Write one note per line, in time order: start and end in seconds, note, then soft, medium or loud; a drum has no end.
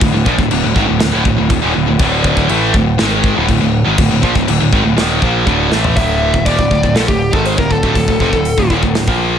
0.01 0.13 D1 medium
0.01 0.13 D2 medium
0.01 0.13 A2 medium
0.01 kick loud
0.01 crash medium
0.14 0.26 D1 medium
0.14 0.26 D2 medium
0.14 0.26 A2 medium
0.26 0.38 A#1 loud
0.26 0.38 A#2 medium
0.26 0.38 F3 loud
0.26 kick medium
0.38 0.50 D1 medium
0.38 0.50 D2 medium
0.38 0.50 A2 medium
0.38 kick medium
0.51 0.63 D1 medium
0.51 0.63 D2 medium
0.51 0.63 A2 medium
0.51 crash medium
0.64 0.75 D1 medium
0.64 0.76 D2 medium
0.64 0.76 A2 medium
0.76 0.87 G#1 medium
0.76 0.88 G#2 medium
0.76 0.88 D#3 loud
0.76 kick medium
0.88 1.00 D1 medium
0.88 1.00 D2 medium
0.88 1.00 A2 medium
1.00 1.12 D1 medium
1.00 1.12 D2 medium
1.00 1.12 A2 medium
1.00 snare loud
1.00 crash medium
1.13 1.25 D1 loud
1.13 1.24 D2 medium
1.13 1.25 A2 loud
1.25 1.37 D1 medium
1.25 1.37 D2 medium
1.25 1.37 A2 medium
1.25 kick medium
1.38 1.49 D1 medium
1.38 1.49 D2 medium
1.38 1.49 A2 medium
1.50 1.61 D1 medium
1.50 1.62 D2 medium
1.50 1.62 A2 medium
1.50 kick medium
1.50 crash medium
1.62 1.75 D#1 loud
1.62 1.74 D#2 loud
1.62 1.74 A#2 loud
1.74 1.87 D1 medium
1.74 1.86 D2 medium
1.74 1.87 A2 medium
1.87 1.99 D1 medium
1.87 1.98 D2 medium
1.87 1.99 A2 medium
1.99 2.46 D1 loud
1.99 2.48 D2 loud
1.99 2.47 A2 loud
1.99 2.49 D3 loud
1.99 kick loud
1.99 crash medium
2.24 kick medium
2.37 kick medium
2.49 2.73 A1 loud
2.49 2.73 A2 medium
2.49 2.73 E3 medium
2.49 2.74 A3 loud
2.49 crash medium
2.74 2.97 D1 medium
2.74 2.94 D2 medium
2.74 2.94 A2 medium
2.74 kick medium
2.98 3.34 G#1 loud
2.98 3.35 G#2 medium
2.98 3.35 D#3 loud
2.98 3.35 G#3 loud
2.98 snare loud
2.98 crash medium
3.24 kick medium
3.36 3.48 D1 loud
3.36 3.47 D2 loud
3.36 3.47 A2 loud
3.48 3.60 D1 medium
3.48 3.60 D2 medium
3.48 3.60 A2 medium
3.48 kick medium
3.48 crash medium
3.61 3.84 D1 medium
3.61 3.81 D2 medium
3.61 3.81 A2 medium
3.85 3.98 G#1 medium
3.85 3.97 G#2 medium
3.85 3.98 D#3 loud
3.98 4.10 D1 medium
3.98 4.10 D2 medium
3.98 4.10 A2 medium
3.98 kick loud
3.98 crash medium
4.11 4.22 D1 medium
4.11 4.22 D2 medium
4.11 4.23 A2 medium
4.23 4.35 A#1 medium
4.23 4.34 A#2 medium
4.23 4.35 F3 medium
4.23 kick medium
4.35 4.47 D1 medium
4.35 4.46 D2 medium
4.35 4.46 A2 medium
4.35 kick medium
4.47 4.59 D1 medium
4.47 4.59 D2 medium
4.47 4.60 A2 medium
4.47 crash medium
4.60 4.72 D1 medium
4.60 4.72 D2 medium
4.60 4.73 A2 medium
4.72 4.84 G#1 loud
4.72 4.84 G#2 medium
4.72 4.84 D#3 loud
4.72 kick medium
4.84 4.96 D1 medium
4.84 4.96 D2 medium
4.84 4.97 A2 medium
4.96 5.20 D#1 loud
4.96 5.21 D#2 medium
4.96 5.21 A#2 loud
4.96 5.21 D#3 loud
4.96 snare loud
4.96 crash medium
5.22 5.45 A#1 loud
5.22 5.46 A#2 medium
5.22 5.46 F3 medium
5.22 5.46 A#3 loud
5.22 kick medium
5.46 5.70 D1 loud
5.46 5.71 D2 medium
5.46 5.70 A2 medium
5.46 5.71 D3 loud
5.46 kick medium
5.71 5.94 A1 loud
5.71 5.96 A2 medium
5.71 5.96 E3 medium
5.71 5.96 A3 loud
5.71 snare medium
5.84 floor tom medium
5.96 6.31 D1 medium
5.96 6.32 D2 loud
5.96 6.33 A2 loud
5.96 6.33 D3 loud
5.96 6.46 E5 loud
5.96 kick loud
5.96 open hi-hat medium
6.33 6.45 D1 medium
6.33 6.45 D2 medium
6.33 6.45 A2 medium
6.33 kick medium
6.45 6.58 D#1 loud
6.45 6.57 D#2 medium
6.45 6.58 A#2 loud
6.45 6.97 D5 medium
6.45 kick loud
6.45 open hi-hat medium
6.58 6.70 D1 medium
6.58 6.69 D2 medium
6.58 6.70 A2 medium
6.58 kick medium
6.71 6.83 D1 medium
6.71 6.82 D2 medium
6.71 6.83 A2 medium
6.71 kick medium
6.83 6.94 D1 medium
6.83 6.96 D2 medium
6.83 6.96 A2 medium
6.83 kick medium
6.95 7.07 A#1 medium
6.95 7.08 A#2 medium
6.95 7.08 F3 loud
6.95 7.08 A4 medium
6.95 snare loud
6.95 open hi-hat medium
7.08 7.32 D1 medium
7.08 7.28 D2 medium
7.08 7.29 A2 medium
7.08 7.34 G4 medium
7.08 kick medium
7.33 7.56 G#1 medium
7.33 7.57 G#2 medium
7.33 7.57 D#3 medium
7.33 7.58 G#3 loud
7.33 7.46 A4 medium
7.33 kick loud
7.45 7.51 C5 medium
7.45 open hi-hat medium
7.58 7.70 D1 medium
7.58 7.69 D2 medium
7.58 7.70 A2 medium
7.58 7.72 A#4 medium
7.58 kick medium
7.70 7.82 D1 medium
7.70 7.82 D2 medium
7.70 7.83 A2 medium
7.70 8.71 A4 medium
7.70 kick medium
7.83 7.95 D1 medium
7.83 7.94 D2 medium
7.83 7.95 A2 loud
7.83 kick medium
7.95 8.07 D1 medium
7.95 8.07 D2 medium
7.95 8.07 A2 medium
7.95 kick medium
7.95 open hi-hat medium
8.08 8.20 D1 medium
8.08 8.21 D2 medium
8.08 8.21 A2 medium
8.08 kick medium
8.20 8.32 F1 medium
8.20 8.32 F2 medium
8.20 8.33 C3 loud
8.20 kick medium
8.33 8.56 D1 medium
8.33 8.53 D2 medium
8.33 8.53 A2 medium
8.33 kick medium
8.45 open hi-hat medium
8.58 8.69 D1 medium
8.58 8.70 D2 medium
8.58 8.70 A2 medium
8.58 kick medium
8.70 8.82 D#1 medium
8.70 8.82 D#2 medium
8.70 8.82 A#2 medium
8.70 kick medium
8.83 8.94 D1 medium
8.83 8.94 D2 medium
8.83 8.95 A2 medium
8.83 kick medium
8.95 9.07 D1 medium
8.95 9.07 D2 medium
8.95 9.08 A2 medium
8.95 snare loud
8.95 open hi-hat medium
9.08 9.39 A#1 medium
9.08 9.39 A#2 medium
9.08 9.39 F3 medium
9.08 9.39 A#3 loud
9.08 kick loud